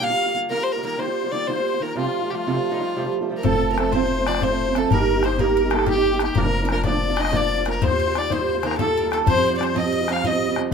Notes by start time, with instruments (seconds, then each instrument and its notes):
0.01 steel-string acoustic guitar D3 G3 A#3 F4, accordion F5, fiddle F5
0.10 steel-string acoustic guitar G3 A#3 F4
0.26 steel-string acoustic guitar G3 A#3 F4
0.33 steel-string acoustic guitar D3 G3 A#3 F4
0.49 steel-string acoustic guitar D#3 G3 A#3 F4, fiddle A#4, accordion A#4
0.57 steel-string acoustic guitar G3 A#3 F4
0.63 fiddle C5
0.72 steel-string acoustic guitar F4, fiddle A#4, accordion A#4
0.77 steel-string acoustic guitar G3 A#3
0.83 steel-string acoustic guitar D#3 G3 A#3 F4, accordion A#4, fiddle A#4
0.98 steel-string acoustic guitar D#3 G3 A#3 F4, fiddle C5, accordion C5
1.07 steel-string acoustic guitar G3 A#3 F4
1.24 steel-string acoustic guitar G3 A#3 F4
1.32 steel-string acoustic guitar D#3 G3 A#3 F4, fiddle D5, accordion D5
1.47 steel-string acoustic guitar D#3 G3 A#3 F4, fiddle C5, accordion C5
1.57 steel-string acoustic guitar G3 A#3 F4
1.74 steel-string acoustic guitar G3 A#3 F4
1.80 steel-string acoustic guitar D#3 G3 A#3 F4, fiddle A#4
1.85 accordion A#4
1.95 steel-string acoustic guitar F2 C3 F3 G3 A3 F4, fiddle F4
2.00 accordion F4
2.05 steel-string acoustic guitar F3 G3 A3 F4
2.22 steel-string acoustic guitar F3 G3 A3 F4
2.30 steel-string acoustic guitar F3 G3 A3 F4, fiddle G4
2.35 fiddle F4, accordion F4
2.46 steel-string acoustic guitar F2 C3 F3 G3 A3 F4
2.54 steel-string acoustic guitar F3 G3 A3 F4
2.71 steel-string acoustic guitar F3 G3 A3 F4, fiddle D#4 F4
2.76 steel-string acoustic guitar F3, accordion F4
2.80 steel-string acoustic guitar G3 A3 F4
2.96 steel-string acoustic guitar F2 C3 F3 G3 A3 F4
3.04 steel-string acoustic guitar F3 G3 A3 F4
3.21 steel-string acoustic guitar F3 G3 A3 F4
3.29 steel-string acoustic guitar F3 G3 A3 F4
3.37 fiddle A#4
3.43 upright bass F1, steel-string acoustic guitar F3 A3 C4 F4, mandolin A4, fiddle A4, accordion A4, bodhran
3.54 steel-string acoustic guitar A3 C4 F4
3.63 bodhran
3.70 steel-string acoustic guitar A3 C4 F4, fiddle A#4
3.77 steel-string acoustic guitar F3 A3 C4 F4, fiddle A4, mandolin A4, accordion A4, bodhran
3.92 steel-string acoustic guitar F3 A3 C4 F4, fiddle C5, mandolin C5, accordion C5, bodhran
4.03 steel-string acoustic guitar A3 C4 F4
4.11 bodhran
4.18 steel-string acoustic guitar A3 C4 F4
4.26 steel-string acoustic guitar F3 A3 C4 F4, mandolin D5, fiddle D5, bodhran
4.35 bodhran
4.40 steel-string acoustic guitar F3 A3 C4 F4, fiddle C5, mandolin C5, accordion C5, bodhran
4.50 steel-string acoustic guitar A3 C4 F4
4.60 bodhran
4.68 steel-string acoustic guitar A3 C4 F4
4.75 steel-string acoustic guitar F3 A3 C4 F4, mandolin A4, fiddle A4, accordion A4, bodhran
4.90 upright bass G1, steel-string acoustic guitar G3 A#3 D#4 G4, mandolin A#4, fiddle A#4, accordion A#4, bodhran
4.99 steel-string acoustic guitar A#3 D#4 G4
5.08 bodhran
5.16 steel-string acoustic guitar A#3 D#4 G4
5.23 steel-string acoustic guitar G3 A#3 D#4 G4, mandolin C5, accordion C5, fiddle C5, bodhran
5.39 steel-string acoustic guitar G3 A#3 D#4 G4, mandolin A#4, accordion A#4, fiddle A#4, bodhran
5.47 steel-string acoustic guitar A#3 D#4 G4
5.56 mandolin A#4, bodhran
5.64 steel-string acoustic guitar A#3 D#4 G4
5.70 steel-string acoustic guitar G3 A#3 D#4, mandolin A4, fiddle A4, bodhran
5.75 steel-string acoustic guitar G4
5.79 bodhran
5.86 steel-string acoustic guitar G3 A#3 D#4 G4, mandolin G4, accordion G4, fiddle G4, bodhran
5.96 steel-string acoustic guitar A#3 D#4 G4
6.04 bodhran
6.13 steel-string acoustic guitar A#3 D#4 G4
6.19 steel-string acoustic guitar G3 A#3 D#4 G4, mandolin G4, accordion G4, fiddle G4, bodhran
6.35 upright bass F1, steel-string acoustic guitar F2 D3 F3 A#3 D4 F4, mandolin A#4, accordion A#4, fiddle A#4, bodhran
6.46 steel-string acoustic guitar F3 A#3 D4 F4
6.53 bodhran
6.62 steel-string acoustic guitar F3 A#3 D4 F4, mandolin A#4
6.69 steel-string acoustic guitar F3 A#3 D4 F4, accordion A#4, fiddle A#4, bodhran
6.83 steel-string acoustic guitar F2 D3 F3 A#3 D4 F4, mandolin D5, accordion D5, fiddle D5, bodhran
6.93 steel-string acoustic guitar F3 A#3 D4 F4
7.02 bodhran
7.10 steel-string acoustic guitar F3 A#3 D4 F4
7.16 steel-string acoustic guitar F3 A#3 D4 F4, mandolin D#5, accordion D#5, bodhran
7.21 fiddle D#5, bodhran
7.31 steel-string acoustic guitar F2 D3 F3 A#3 D4 F4, mandolin D5, bodhran
7.35 accordion D5, fiddle D5
7.41 steel-string acoustic guitar F3 A#3 F4
7.57 steel-string acoustic guitar F3 A#3 D4 F4
7.66 steel-string acoustic guitar F3 A#3 D4 F4, mandolin A#4, accordion A#4, bodhran
7.70 fiddle A#4
7.81 upright bass D#2, steel-string acoustic guitar D#3 G3 A#3 F4, mandolin C5, fiddle C5, accordion C5, bodhran
7.91 steel-string acoustic guitar G3 A#3 F4
8.00 mandolin C5, bodhran
8.07 steel-string acoustic guitar G3 A#3 F4
8.15 steel-string acoustic guitar D#3 G3 A#3 F4, mandolin D5, accordion D5, fiddle D5, bodhran
8.30 steel-string acoustic guitar D#3 G3 A#3 F4, accordion C5, mandolin C5, fiddle C5, bodhran
8.38 steel-string acoustic guitar G3 A#3 F4
8.49 bodhran
8.55 steel-string acoustic guitar G3 A#3 F4
8.60 steel-string acoustic guitar D#3 G3, mandolin A#4, fiddle C5, bodhran
8.64 steel-string acoustic guitar A#3 F4, fiddle A#4
8.71 bodhran
8.78 steel-string acoustic guitar D#3 G3 A#3 F4, fiddle A4, mandolin A4, accordion A4, bodhran
8.86 steel-string acoustic guitar G3 A#3 F4
8.97 mandolin A#4, bodhran
9.03 steel-string acoustic guitar G3 A#3 F4
9.11 steel-string acoustic guitar D#3 G3 A#3 F4, accordion A4, fiddle A4, mandolin A4, bodhran
9.26 upright bass F2, steel-string acoustic guitar F3 G3 C4 F4, fiddle C5, mandolin C5, accordion C5, bodhran
9.36 steel-string acoustic guitar G3 C4
9.45 mandolin D5, bodhran
9.50 steel-string acoustic guitar G3 C4 F4
9.57 steel-string acoustic guitar F3 G3 C4 F4, accordion C5, fiddle D5, bodhran
9.63 mandolin C5, fiddle C5
9.74 steel-string acoustic guitar F3 G3 C4 F4, accordion D#5, mandolin D#5, fiddle D#5, bodhran
9.83 steel-string acoustic guitar G3 C4 F4
9.92 mandolin D#5, bodhran
10.01 steel-string acoustic guitar G3 C4 F4
10.08 steel-string acoustic guitar F3 G3 C4 F4, mandolin F5, accordion F5, bodhran
10.12 fiddle F5
10.16 bodhran
10.24 steel-string acoustic guitar F3 G3 C4 F4, mandolin D#5, accordion D#5, fiddle D#5, bodhran
10.32 steel-string acoustic guitar G3 C4 F4
10.41 bodhran
10.48 steel-string acoustic guitar G3 C4 F4
10.56 steel-string acoustic guitar F3 G3 C4 F4, bodhran